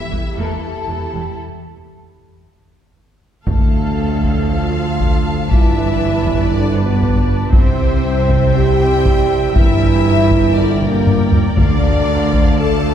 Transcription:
Already playing: violin section E4 E5, french horn section G4
0.11 double bass section E1, cello section E2, viola section E3 G3, french horn section G4, taiko
0.37 double bass section E1, cello section E2, viola section E3 A#3, violin section A4, french horn section A4
0.63 french horn section G4
0.88 double bass section E1, cello section E2, viola section E3
1.14 double bass section E1, cello section E2, viola section E3 G3
3.46 double bass section D2, cello section D2, tuba D2, trombone section A2, french horn section A3, violin section A4 A5, viola section A4 F5, taiko
4.24 taiko
4.50 trombone section F3, french horn section F4, violin section F5
5.00 taiko
5.51 double bass section G1, tuba G1, cello section G2, trombone section E3, french horn section E4, viola section B4 D5, violin section E5, taiko
6.27 taiko
6.52 trombone section D3, french horn section D4, violin section D5
6.77 trombone section B2, french horn section B3, violin section B4
7.02 taiko
7.53 double bass section C2, tuba C2, cello section C3, trombone section C3, french horn section C4, viola section C5 E5, violin section C5 G5, taiko
8.29 taiko
8.54 trombone section G3, french horn section G4, violin section G5
9.06 taiko
9.55 tuba G1, double bass section G1, cello section G2, trombone section E3, french horn section E4, viola section A#4, violin section E5, taiko
10.31 taiko
10.56 trombone section D3, french horn section D4, viola section D5, violin section D5
10.81 trombone section A#2, french horn section A#3, violin section A#4, taiko mid
11.07 taiko low-mid
11.32 taiko low
11.57 double bass section D2, cello section D2, tuba D2, trombone section D3, timpani D3, french horn section D4, violin section D5 F5, taiko
12.33 taiko
12.59 trombone section A3, viola section A4, french horn section A4, violin section A5

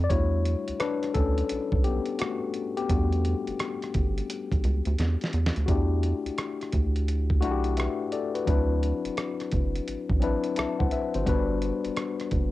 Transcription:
0.04 tine electric piano D5
0.09 analog synth bass E2, tine electric piano G3 A3 D4 E4 F#4 C#5, kick, closed hi-hat
0.45 closed hi-hat
0.68 analog synth bass D2, closed hi-hat
0.80 tine electric piano D4 B4, cross-stick, closed hi-hat
1.03 cross-stick, closed hi-hat
1.14 analog synth bass D2, tine electric piano C#4 A4, kick, closed hi-hat
1.38 closed hi-hat
1.49 analog synth bass B1, closed hi-hat
1.72 analog synth bass B1, kick
1.84 tine electric piano B3 G4, closed hi-hat
2.06 closed hi-hat
2.19 tine electric piano A3 F#4, cross-stick, closed hi-hat
2.54 closed hi-hat
2.77 tine electric piano B3 G4, closed hi-hat
2.89 analog synth bass E2, tine electric piano G3 A3 D4 F#4, kick, closed hi-hat
3.12 closed hi-hat
3.25 closed hi-hat
3.47 analog synth bass G1, closed hi-hat
3.59 cross-stick, closed hi-hat
3.82 cross-stick, closed hi-hat
3.94 analog synth bass G1, kick, closed hi-hat
4.18 closed hi-hat
4.30 closed hi-hat
4.52 analog synth bass B1, kick, closed hi-hat
4.64 analog synth bass C#2, closed hi-hat
4.85 analog synth bass D2, closed hi-hat
4.99 analog synth bass E2, snare, closed hi-hat
5.21 snare, closed hi-hat
5.33 analog synth bass E2, closed hi-hat
5.46 snare
5.56 analog synth bass D2, closed hi-hat
5.66 analog synth bass E2, tine electric piano A3 D4 E4 F#4, kick, closed hi-hat
5.71 tine electric piano G4
6.03 closed hi-hat
6.26 analog synth bass D2, closed hi-hat
6.38 cross-stick, closed hi-hat
6.61 cross-stick, closed hi-hat
6.72 analog synth bass D2, kick, closed hi-hat
6.96 closed hi-hat
7.08 closed hi-hat
7.30 kick
7.41 analog synth bass B1, tine electric piano A3 D4 E4 F#4, closed hi-hat
7.51 tine electric piano G4
7.64 closed hi-hat
7.77 tine electric piano B4 E5, cross-stick, closed hi-hat
8.12 tine electric piano A4 D5, closed hi-hat
8.35 tine electric piano F#4 B4, closed hi-hat
8.46 analog synth bass D2, tine electric piano F#3 C4 D4 E4, kick, closed hi-hat
8.50 tine electric piano B4
8.83 closed hi-hat
9.05 analog synth bass F#1, closed hi-hat
9.17 cross-stick, closed hi-hat
9.40 cross-stick, closed hi-hat
9.52 analog synth bass F#1, kick, closed hi-hat
9.76 closed hi-hat
9.88 analog synth bass A1, closed hi-hat
10.10 analog synth bass A1, kick
10.19 tine electric piano F#3 C4 D4 E4, closed hi-hat
10.24 tine electric piano B4
10.44 closed hi-hat
10.56 analog synth bass C2, tine electric piano E5 A5, cross-stick, closed hi-hat
10.79 analog synth bass C2, tine electric piano C5 F#5, kick
10.91 tine electric piano B4 E5, closed hi-hat
11.14 analog synth bass G#1, tine electric piano F#4 C5, closed hi-hat
11.25 analog synth bass G1, tine electric piano G3 B3 D4 F#4 B4, kick, closed hi-hat
11.62 closed hi-hat
11.85 analog synth bass F#1, closed hi-hat
11.97 cross-stick, closed hi-hat
12.20 cross-stick, closed hi-hat
12.31 analog synth bass F#1, kick, closed hi-hat

